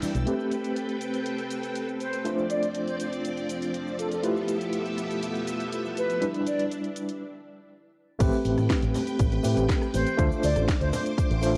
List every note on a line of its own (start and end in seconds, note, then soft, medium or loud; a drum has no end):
0.00 0.24 G3 medium
0.00 0.24 D4 medium
0.00 0.24 E4 medium
0.00 0.25 B4 medium
0.00 0.25 D5 medium
0.00 0.25 G5 medium
0.00 0.23 E6 medium
0.00 muted fingered electric bass stroke soft
0.00 open hi-hat medium
0.00 high conga medium
0.00 cabasa medium
0.15 0.24 B1 medium
0.15 closed hi-hat medium
0.15 cabasa soft
0.26 2.22 A3 medium
0.26 2.22 C4 medium
0.26 2.24 C4 medium
0.26 2.23 G4 medium
0.26 2.24 A4 medium
0.26 2.24 B4 medium
0.26 2.23 B4 medium
0.26 2.24 G5 medium
0.26 closed hi-hat medium
0.26 cabasa soft
0.40 cabasa soft
0.51 closed hi-hat medium
0.51 cabasa medium
0.64 closed hi-hat soft
0.64 cabasa soft
0.76 closed hi-hat medium
0.76 cabasa soft
0.89 closed hi-hat soft
0.89 cabasa soft
1.01 closed hi-hat medium
1.01 cabasa medium
1.14 closed hi-hat soft
1.14 cabasa soft
1.26 closed hi-hat medium
1.26 cabasa soft
1.38 closed hi-hat soft
1.38 cabasa soft
1.51 closed hi-hat medium
1.51 cabasa medium
1.63 closed hi-hat soft
1.63 cabasa soft
1.75 closed hi-hat medium
1.75 cabasa soft
1.89 cabasa soft
2.00 2.30 C5 medium
2.00 closed hi-hat medium
2.00 cabasa medium
2.13 closed hi-hat soft
2.13 cabasa soft
2.24 6.18 F3 medium
2.24 4.20 A3 medium
2.24 4.22 C4 medium
2.24 4.21 D4 medium
2.24 4.21 F4 medium
2.24 4.21 C5 medium
2.24 4.22 D5 medium
2.24 closed hi-hat medium
2.24 cabasa soft
2.38 cabasa soft
2.50 2.67 D5 medium
2.50 closed hi-hat medium
2.50 cabasa medium
2.63 closed hi-hat soft
2.63 cabasa soft
2.75 closed hi-hat medium
2.75 cabasa soft
2.87 2.95 C5 medium
2.87 closed hi-hat soft
2.87 cabasa soft
3.00 3.08 C5 medium
3.00 closed hi-hat medium
3.00 cabasa medium
3.13 closed hi-hat soft
3.13 cabasa soft
3.25 closed hi-hat medium
3.25 cabasa soft
3.37 closed hi-hat soft
3.37 cabasa soft
3.49 closed hi-hat medium
3.49 cabasa medium
3.62 closed hi-hat soft
3.62 cabasa soft
3.74 closed hi-hat medium
3.74 cabasa soft
3.87 cabasa soft
3.98 4.07 A4 medium
3.98 closed hi-hat medium
3.98 cabasa medium
4.11 4.19 A4 medium
4.11 closed hi-hat soft
4.11 cabasa soft
4.23 6.19 A3 medium
4.23 6.20 B3 medium
4.23 6.19 E4 medium
4.23 6.19 F4 medium
4.23 7.18 G4 medium
4.23 6.19 G4 medium
4.23 6.20 A4 medium
4.23 6.20 B4 medium
4.23 7.18 E5 medium
4.23 closed hi-hat medium
4.23 cabasa soft
4.37 cabasa soft
4.48 closed hi-hat medium
4.48 cabasa medium
4.61 closed hi-hat soft
4.61 cabasa soft
4.73 closed hi-hat medium
4.73 cabasa soft
4.86 closed hi-hat soft
4.86 cabasa soft
4.98 closed hi-hat medium
4.98 cabasa medium
5.11 closed hi-hat soft
5.11 cabasa soft
5.23 closed hi-hat medium
5.23 cabasa soft
5.35 closed hi-hat soft
5.35 cabasa soft
5.47 closed hi-hat medium
5.47 cabasa medium
5.60 closed hi-hat soft
5.60 cabasa soft
5.72 closed hi-hat medium
5.72 cabasa soft
5.85 cabasa soft
5.97 6.27 B4 medium
5.97 closed hi-hat medium
5.97 cabasa medium
6.10 closed hi-hat soft
6.10 cabasa soft
6.21 7.21 G3 medium
6.21 7.21 D4 medium
6.21 7.20 D4 medium
6.21 7.21 E4 medium
6.21 7.22 B4 medium
6.21 closed hi-hat medium
6.21 cabasa soft
6.35 closed hi-hat soft
6.35 cabasa soft
6.47 6.64 D5 medium
6.47 closed hi-hat medium
6.47 cabasa medium
6.60 closed hi-hat soft
6.60 cabasa soft
6.72 closed hi-hat medium
6.72 cabasa soft
6.84 closed hi-hat soft
6.84 cabasa soft
6.96 closed hi-hat medium
6.96 cabasa medium
7.09 closed hi-hat soft
7.09 cabasa soft
8.19 8.30 A1 loud
8.19 9.41 A3 medium
8.19 9.42 C4 medium
8.19 9.42 G4 medium
8.19 10.17 B4 medium
8.19 9.42 B4 loud
8.19 10.17 G5 medium
8.19 kick loud
8.19 closed hi-hat medium
8.19 crash loud
8.19 cabasa medium
8.19 cabasa soft
8.32 cabasa soft
8.45 8.55 A1 medium
8.45 open hi-hat loud
8.45 cabasa medium
8.57 8.67 A2 medium
8.57 cross-stick medium
8.57 closed hi-hat medium
8.57 high conga medium
8.57 cabasa soft
8.70 kick loud
8.70 snare loud
8.70 closed hi-hat medium
8.70 cabasa soft
8.82 8.92 A1 medium
8.82 closed hi-hat soft
8.82 cabasa soft
8.94 open hi-hat medium
8.94 low conga medium
8.94 cabasa medium
9.07 closed hi-hat medium
9.07 cabasa soft
9.19 9.38 A1 medium
9.19 kick loud
9.19 closed hi-hat medium
9.19 cabasa soft
9.19 cabasa medium
9.32 closed hi-hat soft
9.32 high conga medium
9.32 cabasa soft
9.43 9.54 A2 medium
9.43 10.15 A3 medium
9.43 10.16 C4 medium
9.43 10.16 G4 medium
9.43 10.16 B4 medium
9.43 open hi-hat loud
9.43 cabasa medium
9.57 9.66 A1 loud
9.57 closed hi-hat medium
9.57 cabasa soft
9.69 kick loud
9.69 snare loud
9.69 closed hi-hat medium
9.69 cabasa soft
9.82 cross-stick medium
9.82 cabasa soft
9.94 10.03 A1 loud
9.94 10.24 C5 medium
9.94 open hi-hat medium
9.94 high conga medium
9.94 cabasa medium
9.94 cabasa loud
10.07 closed hi-hat medium
10.07 cabasa soft
10.17 10.28 D2 loud
10.17 11.40 A3 loud
10.17 11.40 D4 medium
10.17 11.40 F4 medium
10.17 11.57 C5 medium
10.17 11.41 C5 loud
10.17 11.57 D6 medium
10.17 kick loud
10.17 closed hi-hat medium
10.17 cabasa medium
10.17 cabasa soft
10.32 cabasa soft
10.43 10.53 D2 medium
10.43 10.61 D5 medium
10.43 open hi-hat loud
10.43 cabasa loud
10.43 cabasa medium
10.56 10.65 A1 medium
10.56 cross-stick medium
10.56 closed hi-hat medium
10.56 high conga medium
10.56 cabasa soft
10.68 kick loud
10.68 snare loud
10.68 closed hi-hat medium
10.68 cabasa soft
10.81 10.90 D2 medium
10.81 10.89 C5 medium
10.81 closed hi-hat soft
10.81 cabasa soft
10.93 11.01 C5 medium
10.93 open hi-hat medium
10.93 low conga medium
10.93 cabasa medium
11.06 closed hi-hat medium
11.06 cabasa soft
11.18 kick loud
11.18 closed hi-hat medium
11.18 cabasa soft
11.18 cabasa medium
11.30 11.57 A1 medium
11.30 closed hi-hat soft
11.30 high conga medium
11.30 cabasa soft
11.41 11.57 A3 medium
11.41 11.57 D4 medium
11.41 11.57 F4 medium
11.41 11.57 C5 medium
11.41 open hi-hat loud
11.41 cabasa medium